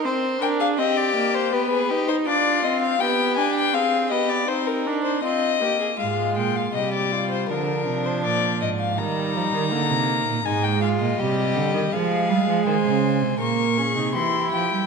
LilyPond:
<<
  \new Staff \with { instrumentName = "Violin" } { \time 4/4 \key c \minor \tempo 4 = 81 r8 g''16 f''16 ees''16 d''8 c''16 b'8. c''16 d''8 ees''16 f''16 | g''8 aes''16 g''16 f''8 ees''16 d''16 c''16 bes'8 c''16 ees''4 | f''8 g''16 f''16 ees''16 d''8 c''16 bes'8. c''16 d''8 ees''16 f''16 | bes''2 aes''16 g''16 f''16 ees''4~ ees''16 |
\key f \minor f''4 aes''4 des'''4 c'''8 g''8 | }
  \new Staff \with { instrumentName = "Violin" } { \time 4/4 \key c \minor c''8 bes'16 aes'16 g'4 g'16 aes'16 g'16 ees'16 f'4 | g'4 aes'8 g'8 ees'4 f'8 g'16 aes'16 | f'4 g'8 f'8 d'2 | ees'2 ees'8 f'8 g'4 |
\key f \minor aes'4 c''4 bes'8 aes'8 g'4 | }
  \new Staff \with { instrumentName = "Viola" } { \time 4/4 \key c \minor c'8 d'8 c'8 bes8 b8 ees'8 d'8 c'8 | b8 d'8 c'8 b8 c'8 d'8 c'8 bes8 | aes4 g4 f2 | g4 bes4 aes4 g4 |
\key f \minor aes2 bes8 des'16 ees'16 e'4 | }
  \new Staff \with { instrumentName = "Cello" } { \clef bass \time 4/4 \key c \minor r1 | r1 | aes,8 bes,8 c4 d8 c8 bes,8 aes,8 | ees8 f16 ees16 d16 c8 bes,16 aes,8. bes,16 c8 d16 ees16 |
\key f \minor f8 g16 f16 ees16 des8 c16 bes,8. c16 e8 f16 g16 | }
>>